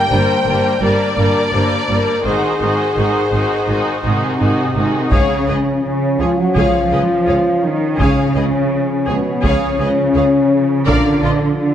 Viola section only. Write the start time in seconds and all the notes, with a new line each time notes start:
0.10 G3 A#3
0.47 G3 A#3
0.81 G3 A#3
1.16 G3 A#3
1.52 G3 A#3
1.88 G3 A#3
2.23 D#3 D#4
2.60 D#3 D#4
2.95 D#3 D#4
3.31 D#3 D#4
3.66 D#3 D#4
4.03 D#3 D#4
4.39 D#3 D#4
4.75 D#3 D#4
5.11 G#4
5.49 G#4
6.20 G#4
6.56 G#4
6.91 G#4
7.27 G#4
7.98 G#4
8.35 G#4
9.06 G#4
9.42 G#4
9.79 G#4
10.17 G#4
10.86 A#4
11.23 F4